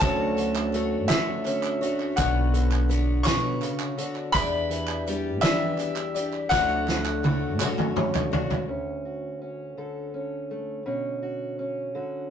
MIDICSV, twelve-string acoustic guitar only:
0, 0, Header, 1, 2, 480
1, 0, Start_track
1, 0, Key_signature, 2, "major"
1, 0, Tempo, 723764
1, 7, Time_signature, 6, 3, 24, 8
1, 8158, End_track
2, 0, Start_track
2, 0, Title_t, "Twelve-string acoustic guitar"
2, 0, Program_c, 0, 25
2, 6, Note_on_c, 0, 50, 74
2, 11, Note_on_c, 0, 54, 76
2, 13, Note_on_c, 0, 57, 75
2, 18, Note_on_c, 0, 66, 71
2, 18, Note_on_c, 0, 73, 75
2, 471, Note_off_c, 0, 57, 0
2, 479, Note_on_c, 0, 57, 54
2, 485, Note_off_c, 0, 50, 0
2, 489, Note_on_c, 0, 62, 56
2, 491, Note_off_c, 0, 66, 0
2, 494, Note_on_c, 0, 66, 54
2, 499, Note_off_c, 0, 73, 0
2, 501, Note_on_c, 0, 73, 59
2, 715, Note_off_c, 0, 73, 0
2, 720, Note_off_c, 0, 66, 0
2, 722, Note_off_c, 0, 57, 0
2, 723, Note_on_c, 0, 73, 63
2, 727, Note_off_c, 0, 62, 0
2, 728, Note_on_c, 0, 66, 64
2, 733, Note_off_c, 0, 54, 0
2, 734, Note_on_c, 0, 57, 59
2, 735, Note_on_c, 0, 54, 54
2, 739, Note_on_c, 0, 50, 50
2, 1192, Note_off_c, 0, 73, 0
2, 1200, Note_on_c, 0, 73, 53
2, 1201, Note_off_c, 0, 66, 0
2, 1208, Note_off_c, 0, 57, 0
2, 1209, Note_off_c, 0, 54, 0
2, 1209, Note_on_c, 0, 66, 47
2, 1211, Note_off_c, 0, 50, 0
2, 1215, Note_on_c, 0, 62, 46
2, 1219, Note_on_c, 0, 57, 40
2, 1437, Note_off_c, 0, 62, 0
2, 1439, Note_off_c, 0, 57, 0
2, 1439, Note_off_c, 0, 66, 0
2, 1440, Note_on_c, 0, 47, 77
2, 1441, Note_off_c, 0, 73, 0
2, 1441, Note_on_c, 0, 59, 75
2, 1445, Note_on_c, 0, 62, 74
2, 1447, Note_on_c, 0, 66, 80
2, 1454, Note_on_c, 0, 73, 79
2, 1912, Note_off_c, 0, 59, 0
2, 1915, Note_on_c, 0, 59, 56
2, 1920, Note_off_c, 0, 47, 0
2, 1920, Note_off_c, 0, 62, 0
2, 1921, Note_off_c, 0, 66, 0
2, 1922, Note_on_c, 0, 62, 56
2, 1927, Note_off_c, 0, 73, 0
2, 1929, Note_on_c, 0, 66, 57
2, 1936, Note_on_c, 0, 73, 65
2, 2147, Note_off_c, 0, 73, 0
2, 2151, Note_off_c, 0, 66, 0
2, 2154, Note_on_c, 0, 73, 64
2, 2158, Note_off_c, 0, 59, 0
2, 2159, Note_on_c, 0, 66, 67
2, 2162, Note_off_c, 0, 62, 0
2, 2165, Note_on_c, 0, 59, 55
2, 2169, Note_on_c, 0, 47, 54
2, 2630, Note_off_c, 0, 73, 0
2, 2638, Note_on_c, 0, 73, 47
2, 2639, Note_off_c, 0, 66, 0
2, 2642, Note_off_c, 0, 59, 0
2, 2644, Note_off_c, 0, 47, 0
2, 2647, Note_on_c, 0, 66, 45
2, 2659, Note_on_c, 0, 62, 44
2, 2879, Note_off_c, 0, 73, 0
2, 2879, Note_on_c, 0, 52, 78
2, 2881, Note_off_c, 0, 62, 0
2, 2883, Note_off_c, 0, 66, 0
2, 2883, Note_on_c, 0, 59, 75
2, 2889, Note_on_c, 0, 62, 77
2, 2892, Note_on_c, 0, 67, 78
2, 2892, Note_on_c, 0, 74, 89
2, 3351, Note_off_c, 0, 59, 0
2, 3359, Note_off_c, 0, 52, 0
2, 3359, Note_on_c, 0, 59, 53
2, 3363, Note_off_c, 0, 62, 0
2, 3365, Note_off_c, 0, 67, 0
2, 3365, Note_on_c, 0, 62, 56
2, 3373, Note_on_c, 0, 67, 58
2, 3375, Note_off_c, 0, 74, 0
2, 3378, Note_on_c, 0, 74, 61
2, 3591, Note_off_c, 0, 67, 0
2, 3591, Note_off_c, 0, 74, 0
2, 3596, Note_off_c, 0, 62, 0
2, 3599, Note_off_c, 0, 59, 0
2, 3599, Note_on_c, 0, 67, 57
2, 3599, Note_on_c, 0, 74, 65
2, 3604, Note_on_c, 0, 62, 63
2, 3608, Note_on_c, 0, 59, 60
2, 3610, Note_on_c, 0, 52, 55
2, 4073, Note_off_c, 0, 74, 0
2, 4076, Note_on_c, 0, 74, 49
2, 4079, Note_off_c, 0, 67, 0
2, 4084, Note_off_c, 0, 59, 0
2, 4085, Note_off_c, 0, 52, 0
2, 4086, Note_on_c, 0, 67, 44
2, 4093, Note_off_c, 0, 62, 0
2, 4095, Note_on_c, 0, 62, 41
2, 4315, Note_on_c, 0, 50, 78
2, 4316, Note_off_c, 0, 62, 0
2, 4318, Note_off_c, 0, 74, 0
2, 4320, Note_on_c, 0, 54, 69
2, 4323, Note_off_c, 0, 67, 0
2, 4324, Note_on_c, 0, 57, 78
2, 4324, Note_on_c, 0, 62, 80
2, 4326, Note_on_c, 0, 66, 77
2, 4327, Note_on_c, 0, 73, 85
2, 4793, Note_off_c, 0, 57, 0
2, 4797, Note_off_c, 0, 50, 0
2, 4800, Note_off_c, 0, 54, 0
2, 4801, Note_on_c, 0, 57, 52
2, 4802, Note_off_c, 0, 62, 0
2, 4803, Note_off_c, 0, 66, 0
2, 4804, Note_off_c, 0, 73, 0
2, 4809, Note_on_c, 0, 62, 58
2, 4813, Note_on_c, 0, 66, 59
2, 4822, Note_on_c, 0, 73, 60
2, 5036, Note_off_c, 0, 73, 0
2, 5040, Note_off_c, 0, 57, 0
2, 5040, Note_off_c, 0, 66, 0
2, 5044, Note_off_c, 0, 62, 0
2, 5044, Note_on_c, 0, 73, 72
2, 5048, Note_on_c, 0, 66, 70
2, 5052, Note_on_c, 0, 57, 63
2, 5054, Note_on_c, 0, 54, 58
2, 5056, Note_on_c, 0, 50, 55
2, 5507, Note_off_c, 0, 73, 0
2, 5515, Note_off_c, 0, 66, 0
2, 5515, Note_on_c, 0, 73, 50
2, 5523, Note_on_c, 0, 66, 50
2, 5527, Note_off_c, 0, 54, 0
2, 5527, Note_off_c, 0, 57, 0
2, 5527, Note_on_c, 0, 62, 47
2, 5529, Note_off_c, 0, 50, 0
2, 5534, Note_on_c, 0, 57, 44
2, 5758, Note_off_c, 0, 73, 0
2, 5762, Note_off_c, 0, 66, 0
2, 5764, Note_off_c, 0, 62, 0
2, 5767, Note_off_c, 0, 57, 0
2, 8158, End_track
0, 0, End_of_file